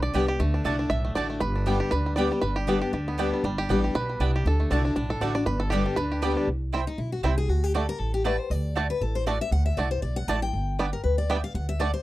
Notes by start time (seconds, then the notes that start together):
Already playing: B1 D3 D4 G4
0.03 D5
0.14 C2 D3 G3 B3 G4 D5 G5
0.28 B3 G4
0.39 D2 D3 A3
0.54 D4
0.64 C2 D3 A3 D4 F#4 D5 A5
0.79 D4
0.90 B1 A2 E5
1.05 A3
1.15 A1 D3 A3 D4 F#4 D5 A5
1.30 A3
1.40 G1 G2 B4
1.56 D4
1.66 D3 G3 B3 G4 D5 G5
1.80 G4
1.91 D2 D3 B4
2.06 G3
2.16 D3 G3 B3 G4 D5 G5
2.31 G3 B3 G4
2.42 G1 G2 B4
2.56 G4
2.67 D3 G3 B3 D4 G4 D5 G5
2.81 B3 G4
2.93 D2 D3 G4
3.08 B3
3.18 D3 G3 B3 D4 G4 D5 G5
3.33 G3
3.44 G1 G2 G3
3.58 G4
3.69 A1 D3 G3 B3 G4 D5 G5
3.84 G4
3.94 B1 B2 B4
4.09 G3
4.20 C2 C3 B3 D4 G4 D5 G5
4.36 G4
4.45 D2 D3 A4
4.60 A3
4.71 C2 D3 A3 D4 F#4 D5 A5
4.85 D4
4.96 B1 A2 D4
5.10 A4
5.21 A1 D3 A3 D4 F#4 D5 A5
5.35 D4 F#4 D5
5.46 G1 G2 B4
5.60 A4
5.70 D3 G3 B3 G4 D5 G5
5.86 D4
5.96 D2 D3 B4
6.12 G4
6.22 D3 G3 B3 G4 D5 G5
6.37 D4
6.47 C2
6.73 G3 C4 E4 C5 G5
6.87 D#4
6.98 B1 E4
7.12 F#4
7.23 C2 G3 C4 E4 G4 C5 G5
7.38 G#4
7.48 D2 F#4
7.64 G4
7.74 A3 D4 F#4 A4 D5 A5
7.89 A#4
8.00 A1 A4
8.14 G4
8.24 A3 D4 F#4 B4 D5 A5
8.40 C5
8.50 D2 D5
8.75 A3 D4 F#4 D5 A5
8.90 B4
9.01 A1 A4
9.15 C5
9.26 A3 D4 F#4 D5 A5
9.41 E5
9.51 D2 F#5
9.66 E5
9.77 C2 A3 D4 F#4 D5 A5
9.91 C5
10.02 B1 D5
10.16 F#5
10.28 A1 A3 D4 F#4 D5 A5
10.42 G5
10.53 G1
10.79 G3 B3 D4 G4 D5 G5
10.93 A#4
11.04 D2 B4
11.18 D5
11.30 G3 B3 D4 G4 D5 E5 G5
11.44 F5
11.54 D2 F#5
11.69 E5
11.79 A3 D4 F#4 D5 A5
11.94 C5